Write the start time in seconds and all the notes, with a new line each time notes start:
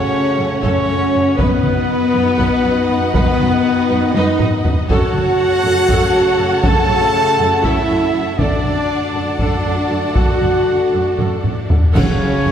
Already playing: C#3 A3 C#4 F#4 A4 C#5 F#5
0.38 F#2 A4
0.62 F#2 C#4 A4 C#5, taiko
0.89 F#2 A4
1.13 F#2 A4
1.37 F#2 D#3 B3 D#4 F#4 B4 D#5 F#5, taiko
1.63 F#2 B4, taiko mid
2.14 F#2 B4
2.39 F#2 B4, taiko
2.64 F#2 B4
2.89 F#2 B4
3.13 F#2 B3 B4, taiko
3.39 F#2 B4, taiko mid
3.90 F#2 B4
4.14 F#2 D#4 B4 D#5, taiko high
4.39 F#2 B4, taiko low-mid
4.64 F#2 B4, taiko low
4.87 F#2 C#3 A3 C#4 F#4 A4 C#5 F#5 A5, taiko
5.14 F#2 A4, taiko mid
5.64 F#2 A4
5.89 F#2 A4, taiko
6.13 F#2 A4
6.38 F#2 A4
6.63 F#2 A4 A5, taiko
6.88 F#2 A4, taiko mid
7.38 F#2 A4
7.63 F#2 E4 A4 E5, taiko
7.89 F#2 A4
8.14 F#2 A4
8.38 F#2 D3 A3 D4 F#4 A4 D5 F#5 A5, taiko
8.64 F#2 A4, taiko mid
9.14 F#2 A4
9.39 F#2 D4 A4 D5, taiko
9.64 F#2 A4
9.90 F#2 A4
10.14 F#2 F#4 A4 F#5, taiko
10.41 F#2 A4, taiko mid
10.92 F#2 A4
11.18 F#2 A4, taiko low-mid
11.43 F#2 A4, taiko low-mid
11.69 F#2 A4, taiko low
11.94 F#1 F#2 C#3 C#4 F#4 A4 C#5 F#5, concert bass drum, taiko, crash
12.20 F#1 F#2 F#4 C#5
12.46 F#1 F#2 C#4 A4, taiko low-mid